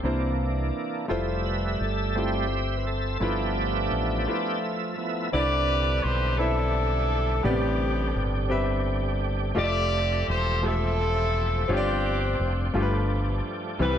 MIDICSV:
0, 0, Header, 1, 5, 480
1, 0, Start_track
1, 0, Key_signature, 0, "major"
1, 0, Tempo, 705053
1, 749, Time_signature, 6, 3, 24, 8
1, 9520, End_track
2, 0, Start_track
2, 0, Title_t, "Horn section"
2, 0, Program_c, 0, 61
2, 3633, Note_on_c, 0, 71, 82
2, 3634, Note_on_c, 0, 74, 104
2, 3641, Note_on_c, 0, 67, 71
2, 4086, Note_off_c, 0, 74, 0
2, 4109, Note_on_c, 0, 72, 92
2, 4326, Note_off_c, 0, 71, 0
2, 4329, Note_off_c, 0, 67, 0
2, 4341, Note_on_c, 0, 69, 93
2, 4350, Note_on_c, 0, 64, 74
2, 4351, Note_off_c, 0, 72, 0
2, 4351, Note_on_c, 0, 62, 72
2, 5044, Note_off_c, 0, 62, 0
2, 5044, Note_off_c, 0, 64, 0
2, 5066, Note_on_c, 0, 67, 82
2, 5067, Note_off_c, 0, 69, 0
2, 5077, Note_on_c, 0, 59, 63
2, 5082, Note_on_c, 0, 60, 57
2, 5609, Note_off_c, 0, 67, 0
2, 5768, Note_off_c, 0, 59, 0
2, 5770, Note_off_c, 0, 60, 0
2, 6523, Note_on_c, 0, 67, 81
2, 6524, Note_on_c, 0, 74, 116
2, 6525, Note_on_c, 0, 69, 78
2, 6971, Note_off_c, 0, 74, 0
2, 7005, Note_on_c, 0, 72, 102
2, 7210, Note_off_c, 0, 67, 0
2, 7212, Note_off_c, 0, 69, 0
2, 7238, Note_on_c, 0, 60, 71
2, 7239, Note_off_c, 0, 72, 0
2, 7241, Note_on_c, 0, 64, 68
2, 7257, Note_on_c, 0, 69, 100
2, 7928, Note_off_c, 0, 60, 0
2, 7929, Note_off_c, 0, 64, 0
2, 7965, Note_off_c, 0, 69, 0
2, 7970, Note_on_c, 0, 60, 59
2, 7972, Note_on_c, 0, 62, 60
2, 7984, Note_on_c, 0, 67, 80
2, 8508, Note_off_c, 0, 67, 0
2, 8654, Note_off_c, 0, 60, 0
2, 8655, Note_off_c, 0, 62, 0
2, 9407, Note_on_c, 0, 71, 87
2, 9409, Note_on_c, 0, 67, 65
2, 9413, Note_on_c, 0, 64, 65
2, 9520, Note_off_c, 0, 64, 0
2, 9520, Note_off_c, 0, 67, 0
2, 9520, Note_off_c, 0, 71, 0
2, 9520, End_track
3, 0, Start_track
3, 0, Title_t, "Grand piano"
3, 0, Program_c, 1, 0
3, 0, Control_c, 1, 64, 127
3, 21, Note_on_c, 1, 58, 64
3, 24, Note_on_c, 1, 62, 54
3, 29, Note_on_c, 1, 48, 61
3, 31, Note_on_c, 1, 64, 53
3, 36, Note_on_c, 1, 72, 72
3, 38, Control_c, 1, 64, 0
3, 169, Control_c, 1, 64, 127
3, 498, Note_off_c, 1, 58, 0
3, 500, Note_off_c, 1, 62, 0
3, 503, Note_off_c, 1, 64, 0
3, 506, Note_off_c, 1, 72, 0
3, 722, Note_off_c, 1, 48, 0
3, 736, Note_on_c, 1, 57, 78
3, 742, Note_on_c, 1, 64, 70
3, 745, Note_on_c, 1, 65, 80
3, 755, Note_on_c, 1, 72, 91
3, 757, Control_c, 1, 64, 0
3, 878, Control_c, 1, 64, 127
3, 1216, Note_off_c, 1, 57, 0
3, 1219, Note_off_c, 1, 64, 0
3, 1221, Note_off_c, 1, 65, 0
3, 1226, Note_off_c, 1, 72, 0
3, 1468, Note_on_c, 1, 57, 54
3, 1473, Note_on_c, 1, 64, 46
3, 1479, Note_on_c, 1, 65, 49
3, 1482, Note_on_c, 1, 67, 59
3, 1943, Note_off_c, 1, 57, 0
3, 1945, Note_off_c, 1, 64, 0
3, 1948, Note_off_c, 1, 65, 0
3, 1950, Note_off_c, 1, 67, 0
3, 2179, Note_on_c, 1, 57, 66
3, 2186, Note_on_c, 1, 64, 64
3, 2191, Note_on_c, 1, 43, 58
3, 2193, Note_on_c, 1, 65, 58
3, 2197, Note_on_c, 1, 71, 69
3, 2199, Control_c, 1, 64, 0
3, 2302, Control_c, 1, 64, 127
3, 2659, Note_off_c, 1, 57, 0
3, 2662, Note_off_c, 1, 64, 0
3, 2666, Note_off_c, 1, 65, 0
3, 2668, Note_off_c, 1, 71, 0
3, 2884, Note_off_c, 1, 43, 0
3, 2901, Note_on_c, 1, 57, 64
3, 2909, Note_on_c, 1, 64, 54
3, 2910, Note_on_c, 1, 65, 59
3, 2918, Note_on_c, 1, 71, 69
3, 3380, Note_off_c, 1, 57, 0
3, 3384, Note_off_c, 1, 64, 0
3, 3384, Note_off_c, 1, 65, 0
3, 3388, Note_off_c, 1, 71, 0
3, 3626, Note_on_c, 1, 60, 77
3, 3630, Note_on_c, 1, 64, 72
3, 3633, Note_on_c, 1, 50, 64
3, 3638, Note_on_c, 1, 71, 74
3, 3640, Control_c, 1, 64, 0
3, 3640, Note_on_c, 1, 74, 85
3, 3773, Control_c, 1, 64, 127
3, 4102, Note_off_c, 1, 60, 0
3, 4104, Note_off_c, 1, 64, 0
3, 4108, Note_off_c, 1, 71, 0
3, 4110, Note_off_c, 1, 74, 0
3, 4326, Note_off_c, 1, 50, 0
3, 4348, Note_on_c, 1, 60, 66
3, 4353, Note_on_c, 1, 64, 60
3, 4355, Note_on_c, 1, 71, 58
3, 4362, Note_on_c, 1, 76, 69
3, 4824, Note_off_c, 1, 60, 0
3, 4826, Note_off_c, 1, 64, 0
3, 4827, Note_off_c, 1, 71, 0
3, 4831, Note_off_c, 1, 76, 0
3, 5059, Note_on_c, 1, 59, 64
3, 5065, Note_on_c, 1, 67, 69
3, 5067, Note_on_c, 1, 45, 67
3, 5070, Note_on_c, 1, 71, 73
3, 5074, Note_on_c, 1, 74, 83
3, 5081, Control_c, 1, 64, 0
3, 5104, Note_on_c, 1, 48, 82
3, 5110, Note_off_c, 1, 59, 0
3, 5211, Control_c, 1, 64, 127
3, 5542, Note_off_c, 1, 67, 0
3, 5545, Note_off_c, 1, 71, 0
3, 5547, Note_off_c, 1, 74, 0
3, 5561, Note_off_c, 1, 48, 0
3, 5762, Note_off_c, 1, 45, 0
3, 5779, Note_on_c, 1, 60, 76
3, 5786, Note_on_c, 1, 67, 68
3, 5793, Note_on_c, 1, 71, 73
3, 5799, Note_on_c, 1, 76, 84
3, 6259, Note_off_c, 1, 60, 0
3, 6263, Note_off_c, 1, 67, 0
3, 6266, Note_off_c, 1, 71, 0
3, 6269, Note_off_c, 1, 76, 0
3, 6500, Note_on_c, 1, 57, 82
3, 6505, Note_on_c, 1, 65, 74
3, 6510, Note_on_c, 1, 67, 77
3, 6517, Note_on_c, 1, 75, 70
3, 6522, Control_c, 1, 64, 0
3, 6559, Note_off_c, 1, 75, 0
3, 6561, Note_on_c, 1, 76, 85
3, 6639, Control_c, 1, 64, 127
3, 6979, Note_off_c, 1, 57, 0
3, 6982, Note_off_c, 1, 65, 0
3, 6985, Note_off_c, 1, 67, 0
3, 7010, Note_off_c, 1, 76, 0
3, 7231, Note_on_c, 1, 57, 63
3, 7235, Note_on_c, 1, 53, 56
3, 7241, Note_on_c, 1, 67, 55
3, 7241, Note_on_c, 1, 76, 53
3, 7277, Note_off_c, 1, 76, 0
3, 7287, Note_on_c, 1, 76, 74
3, 7705, Note_off_c, 1, 57, 0
3, 7707, Note_off_c, 1, 53, 0
3, 7710, Note_off_c, 1, 67, 0
3, 7733, Note_off_c, 1, 76, 0
3, 7951, Note_on_c, 1, 60, 79
3, 7958, Note_on_c, 1, 65, 70
3, 7961, Control_c, 1, 64, 0
3, 7962, Note_on_c, 1, 43, 61
3, 7964, Note_on_c, 1, 67, 74
3, 7965, Note_on_c, 1, 73, 74
3, 8003, Note_off_c, 1, 73, 0
3, 8013, Note_on_c, 1, 74, 90
3, 8088, Control_c, 1, 64, 127
3, 8425, Note_off_c, 1, 60, 0
3, 8428, Note_off_c, 1, 65, 0
3, 8431, Note_off_c, 1, 67, 0
3, 8456, Note_off_c, 1, 74, 0
3, 8649, Note_off_c, 1, 43, 0
3, 8671, Note_on_c, 1, 57, 75
3, 8676, Note_on_c, 1, 43, 67
3, 8677, Note_on_c, 1, 65, 74
3, 8680, Control_c, 1, 64, 0
3, 8681, Note_on_c, 1, 67, 67
3, 8688, Note_on_c, 1, 69, 66
3, 8724, Note_off_c, 1, 69, 0
3, 8731, Note_on_c, 1, 71, 84
3, 8782, Control_c, 1, 64, 127
3, 9144, Note_off_c, 1, 57, 0
3, 9148, Note_off_c, 1, 65, 0
3, 9150, Note_off_c, 1, 67, 0
3, 9174, Note_off_c, 1, 71, 0
3, 9366, Note_off_c, 1, 43, 0
3, 9390, Note_on_c, 1, 55, 80
3, 9396, Note_on_c, 1, 52, 59
3, 9398, Note_on_c, 1, 60, 70
3, 9398, Note_on_c, 1, 64, 74
3, 9401, Control_c, 1, 64, 0
3, 9408, Note_on_c, 1, 71, 84
3, 9511, Control_c, 1, 64, 127
3, 9520, Note_off_c, 1, 52, 0
3, 9520, Note_off_c, 1, 55, 0
3, 9520, Note_off_c, 1, 60, 0
3, 9520, Note_off_c, 1, 64, 0
3, 9520, Note_off_c, 1, 71, 0
3, 9520, End_track
4, 0, Start_track
4, 0, Title_t, "Tonewheel organ"
4, 0, Program_c, 2, 16
4, 28, Note_on_c, 2, 52, 45
4, 33, Note_on_c, 2, 58, 38
4, 33, Note_on_c, 2, 62, 50
4, 721, Note_off_c, 2, 52, 0
4, 724, Note_off_c, 2, 58, 0
4, 724, Note_off_c, 2, 62, 0
4, 745, Note_on_c, 2, 55, 42
4, 747, Note_on_c, 2, 57, 44
4, 750, Note_on_c, 2, 76, 52
4, 993, Note_on_c, 2, 71, 81
4, 1214, Note_off_c, 2, 71, 0
4, 1254, Note_on_c, 2, 69, 67
4, 1454, Note_off_c, 2, 57, 0
4, 1457, Note_off_c, 2, 55, 0
4, 1462, Note_on_c, 2, 57, 38
4, 1465, Note_on_c, 2, 55, 39
4, 1468, Note_on_c, 2, 60, 54
4, 1482, Note_on_c, 2, 67, 75
4, 1489, Note_off_c, 2, 69, 0
4, 1681, Note_off_c, 2, 57, 0
4, 1683, Note_off_c, 2, 55, 0
4, 1881, Note_off_c, 2, 67, 0
4, 1887, Note_on_c, 2, 71, 54
4, 1942, Note_off_c, 2, 71, 0
4, 1953, Note_on_c, 2, 69, 72
4, 2162, Note_off_c, 2, 60, 0
4, 2164, Note_off_c, 2, 76, 0
4, 2182, Note_on_c, 2, 53, 44
4, 2184, Note_on_c, 2, 62, 48
4, 2185, Note_on_c, 2, 57, 42
4, 2187, Note_on_c, 2, 59, 45
4, 2195, Note_on_c, 2, 76, 54
4, 2199, Note_off_c, 2, 69, 0
4, 2201, Note_on_c, 2, 67, 68
4, 3121, Note_off_c, 2, 62, 0
4, 3124, Note_off_c, 2, 59, 0
4, 3129, Note_off_c, 2, 67, 0
4, 3378, Note_off_c, 2, 53, 0
4, 3381, Note_off_c, 2, 57, 0
4, 3386, Note_on_c, 2, 53, 37
4, 3389, Note_on_c, 2, 57, 37
4, 3391, Note_on_c, 2, 59, 34
4, 3398, Note_on_c, 2, 64, 41
4, 3605, Note_off_c, 2, 53, 0
4, 3606, Note_off_c, 2, 57, 0
4, 3607, Note_off_c, 2, 59, 0
4, 3607, Note_off_c, 2, 76, 0
4, 3611, Note_off_c, 2, 64, 0
4, 3632, Note_on_c, 2, 62, 58
4, 3634, Note_on_c, 2, 55, 61
4, 3636, Note_on_c, 2, 50, 62
4, 3636, Note_on_c, 2, 64, 75
4, 5060, Note_off_c, 2, 64, 0
4, 5068, Note_on_c, 2, 67, 77
4, 6485, Note_off_c, 2, 62, 0
4, 6486, Note_off_c, 2, 55, 0
4, 6488, Note_off_c, 2, 50, 0
4, 6510, Note_on_c, 2, 53, 61
4, 6510, Note_on_c, 2, 57, 64
4, 6517, Note_on_c, 2, 76, 59
4, 7936, Note_off_c, 2, 57, 0
4, 7940, Note_off_c, 2, 76, 0
4, 7941, Note_on_c, 2, 62, 56
4, 7949, Note_on_c, 2, 60, 64
4, 8659, Note_off_c, 2, 62, 0
4, 8663, Note_off_c, 2, 60, 0
4, 8680, Note_on_c, 2, 57, 59
4, 8681, Note_on_c, 2, 62, 56
4, 9363, Note_off_c, 2, 53, 0
4, 9384, Note_on_c, 2, 52, 67
4, 9388, Note_off_c, 2, 57, 0
4, 9389, Note_on_c, 2, 60, 56
4, 9520, Note_off_c, 2, 52, 0
4, 9520, Note_off_c, 2, 60, 0
4, 9520, Note_off_c, 2, 62, 0
4, 9520, Note_off_c, 2, 67, 0
4, 9520, End_track
5, 0, Start_track
5, 0, Title_t, "Fingered electric bass"
5, 0, Program_c, 3, 33
5, 24, Note_on_c, 3, 36, 94
5, 479, Note_off_c, 3, 36, 0
5, 753, Note_on_c, 3, 29, 78
5, 1204, Note_off_c, 3, 29, 0
5, 1227, Note_on_c, 3, 31, 66
5, 2162, Note_off_c, 3, 31, 0
5, 2186, Note_on_c, 3, 31, 81
5, 2641, Note_off_c, 3, 31, 0
5, 2665, Note_on_c, 3, 33, 78
5, 2896, Note_off_c, 3, 33, 0
5, 3635, Note_on_c, 3, 36, 82
5, 4086, Note_off_c, 3, 36, 0
5, 4114, Note_on_c, 3, 35, 77
5, 5046, Note_off_c, 3, 35, 0
5, 5069, Note_on_c, 3, 33, 90
5, 5523, Note_off_c, 3, 33, 0
5, 5553, Note_on_c, 3, 31, 79
5, 6485, Note_off_c, 3, 31, 0
5, 6515, Note_on_c, 3, 29, 94
5, 6966, Note_off_c, 3, 29, 0
5, 6999, Note_on_c, 3, 28, 85
5, 7928, Note_off_c, 3, 28, 0
5, 7957, Note_on_c, 3, 31, 103
5, 8407, Note_off_c, 3, 31, 0
5, 8438, Note_on_c, 3, 29, 81
5, 8656, Note_off_c, 3, 29, 0
5, 8674, Note_on_c, 3, 31, 100
5, 9125, Note_off_c, 3, 31, 0
5, 9393, Note_on_c, 3, 36, 85
5, 9520, Note_off_c, 3, 36, 0
5, 9520, End_track
0, 0, End_of_file